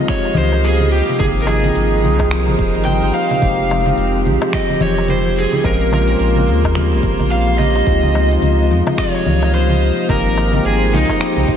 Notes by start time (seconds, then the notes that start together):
Already playing: F3 G#3 A#3 C4 D#4 F4 D#5
0.00 F5
0.08 G3 C#5, finger snap, kick, open hi-hat, darbuka ka
0.25 open hi-hat, darbuka tek
0.34 C#2 A#3 C5, darbuka dum, low conga, shaker
0.52 open hi-hat, darbuka ka, darbuka tek, shaker
0.64 G3 G#4, open hi-hat, shaker
0.80 F3, low conga
0.92 G4, shaker
1.08 C3, open hi-hat, shaker
1.18 G#1 A#3 C4 D#4 G4 G#4, kick, open hi-hat, darbuka tek, low conga, shaker
1.38 D#4
1.42 A#4
1.47 F3 G#4, darbuka tek, shaker
1.62 A#3 C4 D#4 G5, open hi-hat, low conga, shaker
1.76 G#1, open hi-hat, shaker
1.92 G#3 A#4
2.03 C2 F3, low conga, shaker
2.19 C5, kick, open hi-hat, darbuka ka, darbuka tek, shaker
2.31 G3, finger snap, open hi-hat, shaker
2.47 G#1, open hi-hat, darbuka ka, low conga, shaker
2.59 D#1 A#3, kick, darbuka ka, shaker
2.75 G#1, open hi-hat, darbuka tek, shaker
2.85 G3 G5, open hi-hat, low conga, shaker
3.02 G#1 F3, open hi-hat
3.14 F5, darbuka ka, shaker
3.31 C3, open hi-hat, darbuka ka, low conga, shaker
3.41 F1 F3 G#3 C4 D#4 G4, kick, open hi-hat, low conga, shaker
3.57 G4
3.69 F3 C4, darbuka tek, shaker
3.85 C4 D#4 G4, open hi-hat, low conga, shaker
3.98 F1, open hi-hat, shaker
4.14 G#3
4.25 A#1 F3, low conga, shaker
4.42 open hi-hat, darbuka ka, darbuka tek, shaker
4.53 G3 D#5, finger snap, kick, open hi-hat, darbuka ka
4.69 open hi-hat, darbuka tek, low conga
4.80 F1 A#3 C#5, darbuka dum, shaker
4.97 open hi-hat, darbuka ka, darbuka tek, shaker
5.08 G3 C5, open hi-hat, low conga, shaker
5.25 F3
5.36 G#4, shaker
5.52 D#4, open hi-hat, low conga, shaker
5.63 A#1 G#3 A#3 C4 C#4 F4 A#4, kick, open hi-hat, darbuka tek, shaker
5.91 F3 A#4, darbuka tek, low conga, shaker
6.03 C5
6.08 C4 C#4 F4, open hi-hat, shaker
6.19 A#1, open hi-hat, shaker
6.36 G#3, low conga
6.47 D#2 F3, shaker
6.64 kick, open hi-hat, darbuka ka, darbuka tek, shaker
6.75 G3, finger snap, open hi-hat, low conga, shaker
6.92 A#1, open hi-hat, darbuka ka
7.03 G#1 A#3, kick, darbuka ka, shaker
7.20 A#1, open hi-hat, darbuka tek, low conga, shaker
7.31 G3 F5, open hi-hat, shaker
7.47 F3
7.59 D#5, darbuka ka, low conga, shaker
7.75 D#4, open hi-hat, darbuka ka, shaker
7.86 C#2 G#3 C4 D#4 F4, kick, open hi-hat, shaker
8.03 low conga
8.15 F3, darbuka tek, shaker
8.31 C3 D#4 F4, open hi-hat, shaker
8.42 C#2, open hi-hat, low conga, shaker
8.59 G#3
8.70 F2 F3, shaker
8.87 D#5 F5, open hi-hat, darbuka ka, darbuka tek, low conga, shaker
8.98 G3 C#5, finger snap, kick, open hi-hat, darbuka ka, shaker
9.14 open hi-hat, darbuka tek
9.26 C#2 A#3, low conga, darbuka dum, shaker
9.42 open hi-hat, darbuka ka, darbuka tek, shaker
9.53 G3 C5, open hi-hat, shaker
9.69 F3, low conga
9.81 shaker
9.97 D#4, open hi-hat, shaker
10.08 G#1 G#3 A#3 C4 D#4 G4 A#4, kick, open hi-hat, darbuka tek, low conga, shaker
10.25 open hi-hat
10.37 F3 D#4, darbuka tek, shaker
10.51 A#3 C4 D#4, open hi-hat, low conga, shaker
10.56 G4
10.62 G#1 A#4 C5, open hi-hat, shaker
10.66 G#4
10.81 G#3, open hi-hat, shaker
10.93 C2 F3 D#4, low conga, shaker
11.09 kick, open hi-hat, darbuka ka, darbuka tek, shaker
11.19 G3 A#3 C4 D#4 G4, finger snap, open hi-hat, shaker
11.36 C2, open hi-hat, darbuka ka, low conga, shaker
11.48 A#1 F3, kick, darbuka ka, shaker